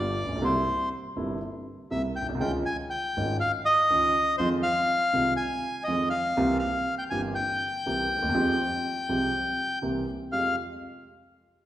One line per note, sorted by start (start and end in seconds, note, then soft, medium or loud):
0.00 0.14 G1 medium
0.00 0.14 G2 medium
0.00 0.14 D3 soft
0.00 0.14 G3 soft
0.00 0.14 B3 soft
0.00 0.14 F4 soft
0.00 0.44 D5 medium
0.25 0.30 A1 soft
0.29 0.35 A#1 medium
0.36 0.42 B1 medium
0.42 0.63 C2 medium
0.42 0.63 C3 medium
0.42 0.63 G3 medium
0.42 0.63 A#3 medium
0.42 0.63 E4 medium
0.42 0.89 C5 medium
1.16 1.37 G1 medium
1.16 1.37 G2 soft
1.16 1.37 C3 soft
1.16 1.37 G3 soft
1.16 1.37 A#3 soft
1.16 1.37 E4 medium
1.91 2.12 C2 soft
1.91 2.12 C3 medium
1.91 2.12 G3 soft
1.91 2.12 A#3 soft
1.91 2.12 E4 soft
1.91 2.02 E5 medium
2.16 2.27 G5 medium
2.22 2.28 A#1 soft
2.29 2.35 B1 medium
2.35 2.41 C2 medium
2.40 2.62 C#2 medium
2.40 2.62 C#3 medium
2.40 2.62 D#3 medium
2.40 2.61 G#3 medium
2.40 2.62 C#4 soft
2.40 2.62 F4 medium
2.40 2.52 G5 medium
2.66 2.77 G#5 medium
2.90 3.37 G5 medium
3.17 3.38 G#1 medium
3.17 3.38 G#2 soft
3.17 3.37 D#3 soft
3.17 3.37 G#3 soft
3.17 3.38 C#4 soft
3.17 3.38 F4 soft
3.40 3.52 F5 medium
3.65 4.36 D#5 loud
3.90 4.11 C#2 medium
3.90 4.11 C#3 medium
3.90 4.11 D#3 soft
3.90 4.11 G#3 soft
3.90 4.11 C#4 soft
3.90 4.11 F4 soft
4.38 4.61 F2 medium
4.38 4.61 D#3 medium
4.38 4.61 F3 medium
4.38 4.61 G#3 medium
4.38 4.61 C4 soft
4.38 4.61 F4 medium
4.38 4.49 C5 medium
4.63 5.34 F5 medium
5.13 5.35 C2 medium
5.13 5.35 C3 medium
5.13 5.35 D#3 soft
5.13 5.35 G#3 soft
5.13 5.35 C4 soft
5.13 5.35 F4 soft
5.37 5.84 G#5 medium
5.84 6.09 F3 medium
5.84 6.09 D#5 medium
5.88 6.09 F2 medium
5.88 6.09 D#3 soft
5.88 6.09 G#3 soft
5.88 6.09 C4 soft
5.88 6.09 F4 soft
6.10 6.58 F5 medium
6.37 6.58 C2 medium
6.37 6.58 C3 medium
6.37 6.58 E3 medium
6.37 6.58 A#3 medium
6.37 6.58 C4 medium
6.37 6.58 G4 medium
6.59 6.95 F5 medium
6.98 7.04 G5 medium
7.10 7.32 G1 medium
7.10 7.32 G2 medium
7.10 7.32 E3 soft
7.10 7.32 A#3 soft
7.10 7.32 C4 soft
7.10 7.32 G4 medium
7.10 7.21 G#5 medium
7.35 9.79 G5 loud
7.86 8.07 C2 soft
7.86 8.07 C3 medium
7.86 8.06 E3 soft
7.86 8.07 A#3 soft
7.86 8.07 C4 soft
7.86 8.07 G4 soft
8.16 8.23 D2 medium
8.22 8.29 D#2 medium
8.29 8.35 E2 medium
8.34 8.55 F2 medium
8.34 8.55 F3 medium
8.34 8.55 G#3 medium
8.34 8.55 C4 medium
8.34 8.55 G4 medium
9.09 9.30 C2 soft
9.09 9.30 C3 soft
9.09 9.30 F3 soft
9.09 9.30 G#3 soft
9.09 9.30 C4 soft
9.09 9.30 G4 medium
9.82 10.04 C2 soft
9.82 10.04 C3 soft
9.82 10.04 E3 soft
9.82 10.04 A#3 soft
9.82 10.04 C4 soft
9.82 10.04 G4 soft
10.32 10.54 F2 soft
10.32 10.54 G#3 soft
10.32 10.53 F4 soft
10.32 10.54 G4 soft
10.32 10.56 F5 medium